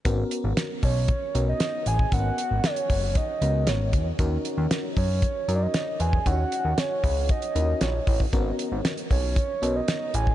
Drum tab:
HH |x-x-x-o-x-x-x-x-|x-x-xxo-x-x-x-x-|x-x-x-o-x-x-x-x-|x-x-x-o-xxx-x-o-|
SD |----o-------o---|----o-------o---|----o-------o---|----o-------o---|
BD |o-----o-o------o|o-----o-o-----o-|o-----o-o------o|o-----o-o-----oo|

HH |x-x-xxo-x-x-x-x-|
SD |----o-------o---|
BD |o-----o-o------o|